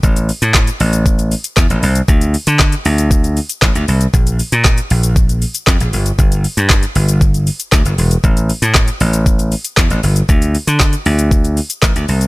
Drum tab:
HH |-xox-xox-xox-xox|-xox-xox-xox-xox|-xox-xox-xox-xox|-xox-xox-xox-xox|
SH |xxxxxxxxxxxxxxxx|xxxxxxxxxxxxxxxx|xxxxxxxxxxxxxxxx|xxxxxxxxxxxxxxxx|
CP |----x-------x---|----x-------x---|----x-------x---|----x-------x---|
SD |----o-------o---|----o-------o---|----o-------o---|----o-------o---|
BD |o---o---o---o---|o---o---o---o---|o---o---o---o---|o---o---o---o---|

HH |-xox-xox-xox-xox|-xox-xox-xox-xox|
SH |xxxxxxxxxxxxxxxx|xxxxxxxxxxxxxxxx|
CP |----x-------x---|----x-------x---|
SD |----o-------o---|----o-------o---|
BD |o---o---o---o---|o---o---o---o---|